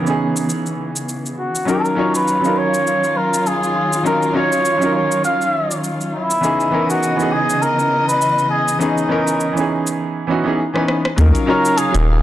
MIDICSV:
0, 0, Header, 1, 6, 480
1, 0, Start_track
1, 0, Tempo, 594059
1, 1355, Time_signature, 4, 2, 24, 8
1, 9878, End_track
2, 0, Start_track
2, 0, Title_t, "Muted trumpet"
2, 0, Program_c, 0, 59
2, 0, Note_on_c, 0, 68, 96
2, 157, Note_off_c, 0, 68, 0
2, 1123, Note_on_c, 0, 66, 73
2, 1343, Note_off_c, 0, 66, 0
2, 1365, Note_on_c, 0, 70, 76
2, 1711, Note_off_c, 0, 70, 0
2, 1741, Note_on_c, 0, 71, 84
2, 2084, Note_on_c, 0, 73, 80
2, 2096, Note_off_c, 0, 71, 0
2, 2562, Note_on_c, 0, 70, 80
2, 2574, Note_off_c, 0, 73, 0
2, 2806, Note_on_c, 0, 68, 80
2, 2818, Note_off_c, 0, 70, 0
2, 3277, Note_off_c, 0, 68, 0
2, 3282, Note_on_c, 0, 70, 83
2, 3502, Note_off_c, 0, 70, 0
2, 3521, Note_on_c, 0, 73, 92
2, 3966, Note_off_c, 0, 73, 0
2, 4003, Note_on_c, 0, 73, 77
2, 4223, Note_off_c, 0, 73, 0
2, 4240, Note_on_c, 0, 77, 92
2, 4685, Note_off_c, 0, 77, 0
2, 4961, Note_on_c, 0, 64, 95
2, 5542, Note_off_c, 0, 64, 0
2, 5578, Note_on_c, 0, 66, 91
2, 5919, Note_on_c, 0, 68, 84
2, 5931, Note_off_c, 0, 66, 0
2, 6157, Note_on_c, 0, 70, 92
2, 6169, Note_off_c, 0, 68, 0
2, 6524, Note_off_c, 0, 70, 0
2, 6529, Note_on_c, 0, 71, 98
2, 6850, Note_off_c, 0, 71, 0
2, 6870, Note_on_c, 0, 68, 92
2, 7096, Note_off_c, 0, 68, 0
2, 7114, Note_on_c, 0, 63, 81
2, 8042, Note_off_c, 0, 63, 0
2, 9280, Note_on_c, 0, 70, 102
2, 9516, Note_on_c, 0, 68, 96
2, 9528, Note_off_c, 0, 70, 0
2, 9878, Note_off_c, 0, 68, 0
2, 9878, End_track
3, 0, Start_track
3, 0, Title_t, "Grand piano"
3, 0, Program_c, 1, 0
3, 19, Note_on_c, 1, 52, 62
3, 34, Note_on_c, 1, 59, 56
3, 50, Note_on_c, 1, 61, 59
3, 65, Note_on_c, 1, 63, 54
3, 80, Note_on_c, 1, 68, 69
3, 1314, Note_off_c, 1, 52, 0
3, 1322, Note_off_c, 1, 59, 0
3, 1329, Note_off_c, 1, 61, 0
3, 1335, Note_on_c, 1, 54, 72
3, 1337, Note_off_c, 1, 63, 0
3, 1343, Note_on_c, 1, 61, 66
3, 1345, Note_off_c, 1, 68, 0
3, 1350, Note_on_c, 1, 63, 66
3, 1358, Note_on_c, 1, 65, 63
3, 1366, Note_on_c, 1, 70, 82
3, 1560, Note_off_c, 1, 54, 0
3, 1564, Note_off_c, 1, 61, 0
3, 1568, Note_off_c, 1, 63, 0
3, 1572, Note_off_c, 1, 65, 0
3, 1576, Note_off_c, 1, 70, 0
3, 1577, Note_on_c, 1, 54, 76
3, 1584, Note_on_c, 1, 61, 72
3, 1592, Note_on_c, 1, 63, 71
3, 1599, Note_on_c, 1, 65, 71
3, 1608, Note_on_c, 1, 73, 82
3, 1927, Note_off_c, 1, 54, 0
3, 1933, Note_off_c, 1, 61, 0
3, 1937, Note_off_c, 1, 63, 0
3, 1939, Note_on_c, 1, 54, 62
3, 1941, Note_off_c, 1, 65, 0
3, 1945, Note_off_c, 1, 73, 0
3, 1955, Note_on_c, 1, 61, 57
3, 1970, Note_on_c, 1, 63, 59
3, 1986, Note_on_c, 1, 65, 59
3, 2001, Note_on_c, 1, 70, 67
3, 3234, Note_off_c, 1, 54, 0
3, 3242, Note_off_c, 1, 61, 0
3, 3250, Note_off_c, 1, 63, 0
3, 3257, Note_off_c, 1, 65, 0
3, 3257, Note_on_c, 1, 54, 70
3, 3265, Note_off_c, 1, 70, 0
3, 3266, Note_on_c, 1, 61, 70
3, 3273, Note_on_c, 1, 63, 66
3, 3281, Note_on_c, 1, 65, 68
3, 3288, Note_on_c, 1, 70, 80
3, 3481, Note_off_c, 1, 54, 0
3, 3486, Note_off_c, 1, 61, 0
3, 3489, Note_off_c, 1, 63, 0
3, 3493, Note_off_c, 1, 65, 0
3, 3497, Note_off_c, 1, 70, 0
3, 3498, Note_on_c, 1, 54, 72
3, 3505, Note_on_c, 1, 61, 66
3, 3514, Note_on_c, 1, 63, 70
3, 3520, Note_on_c, 1, 65, 72
3, 3528, Note_on_c, 1, 73, 83
3, 3847, Note_off_c, 1, 54, 0
3, 3854, Note_off_c, 1, 61, 0
3, 3858, Note_off_c, 1, 63, 0
3, 3859, Note_on_c, 1, 54, 64
3, 3861, Note_off_c, 1, 65, 0
3, 3865, Note_off_c, 1, 73, 0
3, 3875, Note_on_c, 1, 61, 58
3, 3889, Note_on_c, 1, 63, 56
3, 3905, Note_on_c, 1, 65, 60
3, 3921, Note_on_c, 1, 70, 70
3, 5154, Note_off_c, 1, 54, 0
3, 5162, Note_off_c, 1, 61, 0
3, 5169, Note_off_c, 1, 63, 0
3, 5177, Note_off_c, 1, 65, 0
3, 5178, Note_on_c, 1, 52, 73
3, 5185, Note_off_c, 1, 70, 0
3, 5185, Note_on_c, 1, 59, 66
3, 5194, Note_on_c, 1, 61, 64
3, 5202, Note_on_c, 1, 63, 67
3, 5209, Note_on_c, 1, 68, 82
3, 5402, Note_off_c, 1, 52, 0
3, 5405, Note_off_c, 1, 59, 0
3, 5410, Note_off_c, 1, 61, 0
3, 5414, Note_off_c, 1, 63, 0
3, 5417, Note_off_c, 1, 68, 0
3, 5419, Note_on_c, 1, 52, 75
3, 5428, Note_on_c, 1, 59, 73
3, 5435, Note_on_c, 1, 61, 69
3, 5442, Note_on_c, 1, 63, 68
3, 5450, Note_on_c, 1, 70, 79
3, 5766, Note_off_c, 1, 52, 0
3, 5775, Note_off_c, 1, 59, 0
3, 5778, Note_on_c, 1, 52, 60
3, 5779, Note_off_c, 1, 61, 0
3, 5782, Note_off_c, 1, 63, 0
3, 5786, Note_off_c, 1, 70, 0
3, 5794, Note_on_c, 1, 59, 60
3, 5809, Note_on_c, 1, 61, 61
3, 5825, Note_on_c, 1, 63, 59
3, 5840, Note_on_c, 1, 68, 72
3, 7074, Note_off_c, 1, 52, 0
3, 7082, Note_off_c, 1, 59, 0
3, 7089, Note_off_c, 1, 61, 0
3, 7097, Note_off_c, 1, 63, 0
3, 7099, Note_on_c, 1, 52, 72
3, 7104, Note_off_c, 1, 68, 0
3, 7105, Note_on_c, 1, 59, 69
3, 7115, Note_on_c, 1, 61, 67
3, 7121, Note_on_c, 1, 63, 70
3, 7129, Note_on_c, 1, 68, 82
3, 7322, Note_off_c, 1, 52, 0
3, 7325, Note_off_c, 1, 59, 0
3, 7330, Note_off_c, 1, 61, 0
3, 7333, Note_off_c, 1, 63, 0
3, 7337, Note_off_c, 1, 68, 0
3, 7338, Note_on_c, 1, 52, 77
3, 7346, Note_on_c, 1, 59, 71
3, 7353, Note_on_c, 1, 61, 72
3, 7361, Note_on_c, 1, 63, 69
3, 7368, Note_on_c, 1, 70, 83
3, 7687, Note_off_c, 1, 52, 0
3, 7694, Note_off_c, 1, 59, 0
3, 7698, Note_off_c, 1, 61, 0
3, 7699, Note_on_c, 1, 52, 67
3, 7702, Note_off_c, 1, 63, 0
3, 7705, Note_off_c, 1, 70, 0
3, 7714, Note_on_c, 1, 59, 56
3, 7730, Note_on_c, 1, 61, 59
3, 7745, Note_on_c, 1, 63, 56
3, 7761, Note_on_c, 1, 68, 70
3, 8278, Note_off_c, 1, 52, 0
3, 8286, Note_off_c, 1, 59, 0
3, 8294, Note_off_c, 1, 61, 0
3, 8298, Note_on_c, 1, 52, 71
3, 8301, Note_off_c, 1, 63, 0
3, 8307, Note_on_c, 1, 59, 63
3, 8309, Note_off_c, 1, 68, 0
3, 8314, Note_on_c, 1, 61, 65
3, 8322, Note_on_c, 1, 63, 68
3, 8330, Note_on_c, 1, 66, 81
3, 8421, Note_off_c, 1, 52, 0
3, 8427, Note_off_c, 1, 59, 0
3, 8431, Note_off_c, 1, 61, 0
3, 8433, Note_on_c, 1, 52, 77
3, 8435, Note_off_c, 1, 63, 0
3, 8438, Note_off_c, 1, 66, 0
3, 8441, Note_on_c, 1, 59, 64
3, 8450, Note_on_c, 1, 61, 68
3, 8457, Note_on_c, 1, 63, 70
3, 8465, Note_on_c, 1, 68, 77
3, 8553, Note_off_c, 1, 52, 0
3, 8557, Note_off_c, 1, 59, 0
3, 8561, Note_off_c, 1, 61, 0
3, 8565, Note_off_c, 1, 63, 0
3, 8569, Note_off_c, 1, 68, 0
3, 8674, Note_on_c, 1, 52, 76
3, 8681, Note_on_c, 1, 59, 71
3, 8690, Note_on_c, 1, 61, 71
3, 8697, Note_on_c, 1, 63, 70
3, 8705, Note_on_c, 1, 71, 78
3, 8880, Note_off_c, 1, 52, 0
3, 8884, Note_off_c, 1, 59, 0
3, 8888, Note_off_c, 1, 61, 0
3, 8891, Note_off_c, 1, 63, 0
3, 8895, Note_off_c, 1, 71, 0
3, 9020, Note_on_c, 1, 54, 76
3, 9026, Note_on_c, 1, 61, 72
3, 9034, Note_on_c, 1, 63, 73
3, 9042, Note_on_c, 1, 65, 76
3, 9050, Note_on_c, 1, 70, 87
3, 9243, Note_off_c, 1, 54, 0
3, 9246, Note_off_c, 1, 61, 0
3, 9250, Note_off_c, 1, 63, 0
3, 9254, Note_off_c, 1, 65, 0
3, 9258, Note_off_c, 1, 70, 0
3, 9260, Note_on_c, 1, 54, 80
3, 9268, Note_on_c, 1, 61, 81
3, 9275, Note_on_c, 1, 63, 80
3, 9284, Note_on_c, 1, 65, 84
3, 9291, Note_on_c, 1, 73, 90
3, 9608, Note_off_c, 1, 54, 0
3, 9615, Note_off_c, 1, 61, 0
3, 9619, Note_off_c, 1, 63, 0
3, 9620, Note_on_c, 1, 54, 72
3, 9623, Note_off_c, 1, 65, 0
3, 9627, Note_off_c, 1, 73, 0
3, 9635, Note_on_c, 1, 61, 65
3, 9650, Note_on_c, 1, 63, 68
3, 9681, Note_on_c, 1, 70, 79
3, 9878, Note_off_c, 1, 54, 0
3, 9878, Note_off_c, 1, 61, 0
3, 9878, Note_off_c, 1, 63, 0
3, 9878, Note_off_c, 1, 70, 0
3, 9878, End_track
4, 0, Start_track
4, 0, Title_t, "String section"
4, 0, Program_c, 2, 48
4, 0, Note_on_c, 2, 49, 68
4, 0, Note_on_c, 2, 52, 61
4, 0, Note_on_c, 2, 59, 63
4, 1324, Note_off_c, 2, 52, 0
4, 1324, Note_off_c, 2, 59, 0
4, 1325, Note_off_c, 2, 49, 0
4, 1352, Note_on_c, 2, 51, 70
4, 1352, Note_on_c, 2, 65, 74
4, 1354, Note_on_c, 2, 54, 64
4, 1354, Note_on_c, 2, 61, 60
4, 5161, Note_off_c, 2, 51, 0
4, 5162, Note_off_c, 2, 54, 0
4, 5162, Note_off_c, 2, 61, 0
4, 5162, Note_off_c, 2, 65, 0
4, 5190, Note_on_c, 2, 49, 75
4, 5190, Note_on_c, 2, 75, 79
4, 5191, Note_on_c, 2, 59, 63
4, 5192, Note_on_c, 2, 52, 66
4, 7094, Note_off_c, 2, 59, 0
4, 7112, Note_on_c, 2, 61, 68
4, 8044, Note_off_c, 2, 49, 0
4, 8044, Note_off_c, 2, 75, 0
4, 8045, Note_off_c, 2, 52, 0
4, 8064, Note_off_c, 2, 61, 0
4, 9037, Note_on_c, 2, 49, 76
4, 9039, Note_on_c, 2, 77, 86
4, 9040, Note_on_c, 2, 54, 72
4, 9878, Note_off_c, 2, 49, 0
4, 9878, Note_off_c, 2, 54, 0
4, 9878, Note_off_c, 2, 77, 0
4, 9878, End_track
5, 0, Start_track
5, 0, Title_t, "Sub bass"
5, 0, Program_c, 3, 38
5, 9033, Note_on_c, 3, 39, 90
5, 9142, Note_off_c, 3, 39, 0
5, 9650, Note_on_c, 3, 27, 81
5, 9878, Note_off_c, 3, 27, 0
5, 9878, End_track
6, 0, Start_track
6, 0, Title_t, "Drums"
6, 54, Note_on_c, 9, 82, 30
6, 135, Note_off_c, 9, 82, 0
6, 295, Note_on_c, 9, 82, 60
6, 376, Note_off_c, 9, 82, 0
6, 399, Note_on_c, 9, 82, 49
6, 480, Note_off_c, 9, 82, 0
6, 535, Note_on_c, 9, 82, 27
6, 616, Note_off_c, 9, 82, 0
6, 774, Note_on_c, 9, 82, 60
6, 855, Note_off_c, 9, 82, 0
6, 879, Note_on_c, 9, 82, 52
6, 959, Note_off_c, 9, 82, 0
6, 1017, Note_on_c, 9, 82, 31
6, 1098, Note_off_c, 9, 82, 0
6, 1255, Note_on_c, 9, 82, 59
6, 1336, Note_off_c, 9, 82, 0
6, 1359, Note_on_c, 9, 82, 43
6, 1440, Note_off_c, 9, 82, 0
6, 1496, Note_on_c, 9, 82, 29
6, 1576, Note_off_c, 9, 82, 0
6, 1736, Note_on_c, 9, 82, 58
6, 1817, Note_off_c, 9, 82, 0
6, 1839, Note_on_c, 9, 82, 48
6, 1920, Note_off_c, 9, 82, 0
6, 1975, Note_on_c, 9, 82, 30
6, 2056, Note_off_c, 9, 82, 0
6, 2215, Note_on_c, 9, 82, 58
6, 2295, Note_off_c, 9, 82, 0
6, 2319, Note_on_c, 9, 82, 48
6, 2400, Note_off_c, 9, 82, 0
6, 2455, Note_on_c, 9, 82, 28
6, 2536, Note_off_c, 9, 82, 0
6, 2696, Note_on_c, 9, 82, 58
6, 2777, Note_off_c, 9, 82, 0
6, 2799, Note_on_c, 9, 82, 53
6, 2880, Note_off_c, 9, 82, 0
6, 2937, Note_on_c, 9, 82, 30
6, 3017, Note_off_c, 9, 82, 0
6, 3175, Note_on_c, 9, 82, 61
6, 3256, Note_off_c, 9, 82, 0
6, 3280, Note_on_c, 9, 82, 45
6, 3361, Note_off_c, 9, 82, 0
6, 3415, Note_on_c, 9, 82, 26
6, 3496, Note_off_c, 9, 82, 0
6, 3654, Note_on_c, 9, 82, 54
6, 3735, Note_off_c, 9, 82, 0
6, 3759, Note_on_c, 9, 82, 47
6, 3840, Note_off_c, 9, 82, 0
6, 3894, Note_on_c, 9, 82, 30
6, 3974, Note_off_c, 9, 82, 0
6, 4133, Note_on_c, 9, 82, 58
6, 4214, Note_off_c, 9, 82, 0
6, 4236, Note_on_c, 9, 82, 47
6, 4317, Note_off_c, 9, 82, 0
6, 4375, Note_on_c, 9, 82, 28
6, 4456, Note_off_c, 9, 82, 0
6, 4614, Note_on_c, 9, 82, 54
6, 4695, Note_off_c, 9, 82, 0
6, 4717, Note_on_c, 9, 82, 51
6, 4798, Note_off_c, 9, 82, 0
6, 4855, Note_on_c, 9, 82, 29
6, 4936, Note_off_c, 9, 82, 0
6, 5095, Note_on_c, 9, 82, 60
6, 5176, Note_off_c, 9, 82, 0
6, 5199, Note_on_c, 9, 82, 43
6, 5280, Note_off_c, 9, 82, 0
6, 5335, Note_on_c, 9, 82, 27
6, 5416, Note_off_c, 9, 82, 0
6, 5575, Note_on_c, 9, 82, 56
6, 5656, Note_off_c, 9, 82, 0
6, 5679, Note_on_c, 9, 82, 46
6, 5760, Note_off_c, 9, 82, 0
6, 5814, Note_on_c, 9, 82, 29
6, 5895, Note_off_c, 9, 82, 0
6, 6056, Note_on_c, 9, 82, 54
6, 6137, Note_off_c, 9, 82, 0
6, 6160, Note_on_c, 9, 82, 44
6, 6241, Note_off_c, 9, 82, 0
6, 6296, Note_on_c, 9, 82, 26
6, 6377, Note_off_c, 9, 82, 0
6, 6537, Note_on_c, 9, 82, 59
6, 6618, Note_off_c, 9, 82, 0
6, 6639, Note_on_c, 9, 82, 51
6, 6719, Note_off_c, 9, 82, 0
6, 6776, Note_on_c, 9, 82, 29
6, 6856, Note_off_c, 9, 82, 0
6, 7015, Note_on_c, 9, 82, 55
6, 7096, Note_off_c, 9, 82, 0
6, 7118, Note_on_c, 9, 82, 45
6, 7198, Note_off_c, 9, 82, 0
6, 7254, Note_on_c, 9, 82, 28
6, 7334, Note_off_c, 9, 82, 0
6, 7493, Note_on_c, 9, 82, 56
6, 7574, Note_off_c, 9, 82, 0
6, 7598, Note_on_c, 9, 82, 49
6, 7679, Note_off_c, 9, 82, 0
6, 7735, Note_on_c, 9, 82, 30
6, 7815, Note_off_c, 9, 82, 0
6, 7974, Note_on_c, 9, 82, 58
6, 8054, Note_off_c, 9, 82, 0
6, 8690, Note_on_c, 9, 37, 47
6, 8771, Note_off_c, 9, 37, 0
6, 8794, Note_on_c, 9, 37, 70
6, 8875, Note_off_c, 9, 37, 0
6, 8929, Note_on_c, 9, 37, 70
6, 9010, Note_off_c, 9, 37, 0
6, 9033, Note_on_c, 9, 36, 120
6, 9033, Note_on_c, 9, 42, 67
6, 9037, Note_on_c, 9, 82, 54
6, 9114, Note_off_c, 9, 36, 0
6, 9114, Note_off_c, 9, 42, 0
6, 9118, Note_off_c, 9, 82, 0
6, 9170, Note_on_c, 9, 42, 45
6, 9174, Note_on_c, 9, 82, 33
6, 9251, Note_off_c, 9, 42, 0
6, 9255, Note_off_c, 9, 82, 0
6, 9414, Note_on_c, 9, 82, 61
6, 9495, Note_off_c, 9, 82, 0
6, 9515, Note_on_c, 9, 42, 65
6, 9519, Note_on_c, 9, 82, 55
6, 9596, Note_off_c, 9, 42, 0
6, 9600, Note_off_c, 9, 82, 0
6, 9651, Note_on_c, 9, 42, 46
6, 9655, Note_on_c, 9, 82, 35
6, 9732, Note_off_c, 9, 42, 0
6, 9736, Note_off_c, 9, 82, 0
6, 9878, End_track
0, 0, End_of_file